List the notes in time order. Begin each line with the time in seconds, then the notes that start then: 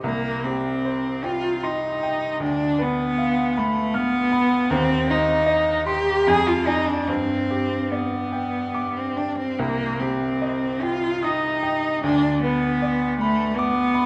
0.03 C2 A#3
0.44 C4 G4
0.85 C5
1.24 F4 G5
1.63 D#4 C6
2.03 G5
2.40 D2 D4
2.79 B3 B4
3.18 F5
3.57 A3 B5
3.94 B3 F6
4.32 B5
4.70 D#2 C4
5.08 D#4 C5
5.46 D#5
5.87 G4 C6
6.27 F2 G#4
6.47 F4
6.66 D#4 D5 G#5
6.87 D4
7.07 G2 C4
7.50 G4
7.91 B3 D5
8.32 G5
8.74 D6
8.96 C4
9.17 D4 G5
9.38 C4
9.59 C2 A#3
10.00 C4 G4
10.42 D#5
10.82 F4 G5
11.23 D#4 D#6
11.63 G5
12.03 D2 D4
12.42 B3 B4
12.82 D5
13.20 A3 B5
13.57 B3 D6
13.94 B5